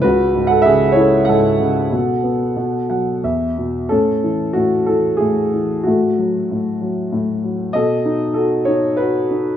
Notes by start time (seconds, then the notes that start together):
0.02 C#2 F#4 B4
0.35 G#2
0.47 A4 F#5
0.62 G#4 E5
0.66 C#3
0.92 E4 C#5
0.98 A4
1.25 G#2 F#5
1.29 A4
1.60 C#3
1.92 B2
2.23 B3
2.56 B2
2.90 F#3 F#5
3.24 E2 E5
3.58 B2
3.89 A2 C#4 A4
4.24 E3
4.53 A2 F#4
4.86 E3 A4
5.17 A2 G#4
5.54 E3
5.84 A2 A3 F#4
6.18 F#3
6.51 A2
6.82 F#3
7.12 A2
7.44 F#3
7.73 B2 A4 D#5
8.06 D#4
8.34 F#4 A4
8.65 D#4 C#5
8.97 F#4 B4
9.31 D#4